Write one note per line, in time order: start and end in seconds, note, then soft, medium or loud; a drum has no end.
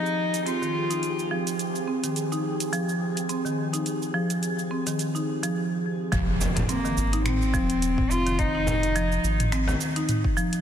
0.00 6.12 F3 medium
0.00 6.12 C4 medium
0.00 0.47 D#4 loud
0.00 6.12 G4 medium
0.00 6.12 G#4 medium
0.06 shaker soft
0.34 closed hi-hat soft
0.34 shaker medium
0.46 0.60 C4 medium
0.46 1.31 F4 loud
0.46 closed hi-hat soft
0.46 shaker soft
0.62 0.89 D#3 medium
0.62 shaker soft
0.90 1.30 D#4 medium
0.90 closed hi-hat soft
0.90 shaker medium
1.03 closed hi-hat soft
1.03 shaker soft
1.19 shaker soft
1.31 1.46 F3 medium
1.47 closed hi-hat soft
1.47 shaker medium
1.59 closed hi-hat soft
1.59 shaker medium
1.76 shaker soft
1.88 2.02 C4 medium
2.04 2.30 D#3 medium
2.04 closed hi-hat soft
2.04 shaker medium
2.16 closed hi-hat soft
2.16 shaker medium
2.32 2.72 D#4 medium
2.32 shaker soft
2.60 closed hi-hat soft
2.60 shaker medium
2.73 2.88 F3 medium
2.73 closed hi-hat soft
2.73 shaker soft
2.89 shaker soft
3.17 closed hi-hat soft
3.17 shaker medium
3.29 3.44 C4 medium
3.29 closed hi-hat soft
3.29 shaker medium
3.45 3.72 D#3 medium
3.45 shaker soft
3.73 4.13 D#4 medium
3.73 closed hi-hat soft
3.73 shaker medium
3.86 closed hi-hat soft
3.86 shaker medium
4.02 shaker soft
4.14 4.29 F3 medium
4.30 closed hi-hat soft
4.30 shaker medium
4.43 closed hi-hat soft
4.43 shaker medium
4.59 shaker soft
4.71 4.85 C4 medium
4.87 5.13 D#3 medium
4.87 closed hi-hat soft
4.87 shaker medium
4.99 closed hi-hat soft
4.99 shaker medium
5.15 5.26 D#4 medium
5.15 shaker soft
5.43 5.55 F3 medium
5.43 closed hi-hat soft
5.43 shaker medium
6.12 6.64 F1 loud
6.12 6.27 F3 loud
6.12 kick loud
6.12 closed hi-hat soft
6.12 impact medium
6.12 shaker soft
6.41 frame drum medium
6.41 shaker medium
6.56 closed hi-hat medium
6.56 mid tom medium
6.56 frame drum medium
6.56 shaker soft
6.69 7.22 A#3 medium
6.69 6.83 C4 medium
6.69 closed hi-hat soft
6.69 shaker soft
6.85 7.11 D#3 medium
6.85 shaker soft
6.97 7.55 G#1 medium
6.97 shaker medium
7.13 7.53 D#4 medium
7.13 closed hi-hat medium
7.13 shaker soft
7.26 8.13 C4 loud
7.26 finger snap medium
7.26 closed hi-hat soft
7.26 mid tom medium
7.26 shaker soft
7.42 shaker soft
7.54 8.06 D#1 medium
7.54 7.69 F3 loud
7.54 kick loud
7.54 shaker medium
7.70 closed hi-hat medium
7.70 shaker soft
7.82 closed hi-hat soft
7.82 shaker soft
7.98 kick loud
7.98 mid tom medium
8.10 9.19 F1 medium
8.10 8.25 C4 medium
8.10 8.41 F4 loud
8.10 shaker medium
8.26 8.53 D#3 medium
8.26 closed hi-hat medium
8.26 shaker soft
8.39 9.52 D#4 loud
8.39 kick loud
8.39 closed hi-hat soft
8.39 shaker soft
8.55 8.94 D#4 medium
8.67 mid tom medium
8.67 frame drum medium
8.67 shaker medium
8.83 closed hi-hat medium
8.83 shaker soft
8.96 9.11 F3 loud
8.96 closed hi-hat soft
8.96 shaker soft
9.12 shaker soft
9.24 9.76 G#1 medium
9.24 shaker medium
9.40 closed hi-hat medium
9.40 mid tom medium
9.40 shaker soft
9.52 9.66 C4 medium
9.52 finger snap medium
9.52 closed hi-hat soft
9.52 shaker soft
9.67 9.94 D#3 medium
9.67 frame drum loud
9.67 shaker soft
9.81 shaker medium
9.96 10.36 D#4 medium
9.96 closed hi-hat medium
9.96 shaker soft
10.09 closed hi-hat soft
10.09 mid tom medium
10.09 shaker soft
10.24 kick loud
10.37 10.52 F3 loud
10.37 shaker medium
10.53 closed hi-hat medium
10.53 shaker soft